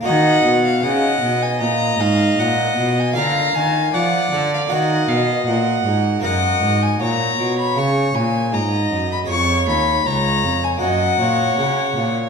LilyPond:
<<
  \new Staff \with { instrumentName = "Violin" } { \time 4/4 \key ees \minor \tempo 4 = 78 ees''8. f''16 ges''8. aes''16 bes''8 f''8 ges''8. aes''16 | bes''8 aes''8 ges''8. f''16 ees''4.~ ees''16 r16 | ges''8. aes''16 bes''8. ces'''16 des'''8 aes''8 bes''8. ces'''16 | des'''8 ces'''8 bes''8. aes''16 ges''4.~ ges''16 r16 | }
  \new Staff \with { instrumentName = "Violin" } { \time 4/4 \key ees \minor ges''4 ees''2. | f''4 d''4 ges''8 f''8 ges''4 | ees''4 des''2 ees''4 | des''4 des''4 ees''8 des''4. | }
  \new Staff \with { instrumentName = "Harpsichord" } { \time 4/4 \key ees \minor <bes ees' ges'>1 | <bes f' bes'>2 <bes ges' bes'>2 | <bes ges' bes'>1 | <aes aes' des''>2 <bes ges' des''>2 | }
  \new Staff \with { instrumentName = "Harpsichord" } { \clef bass \time 4/4 \key ees \minor ees8 ces8 des8 ces8 bes,8 aes,8 bes,8 ces8 | d8 ees8 f8 d8 ees8 ces8 bes,8 aes,8 | ges,8 aes,8 bes,8 ces8 des8 bes,8 aes,8 ges,8 | f,8 ees,8 des,8 f,8 ges,8 bes,8 des8 bes,8 | }
  \new Staff \with { instrumentName = "Cello" } { \clef bass \time 4/4 \key ees \minor ees8 ces8 des8 ces8 bes,8 aes,8 bes,8 ces8 | d8 ees8 f8 d8 ees8 ces8 bes,8 aes,8 | ges,8 aes,8 bes,8 ces8 des8 bes,8 aes,8 ges,8 | f,8 ees,8 des,8 f,8 ges,8 bes,8 des8 bes,8 | }
>>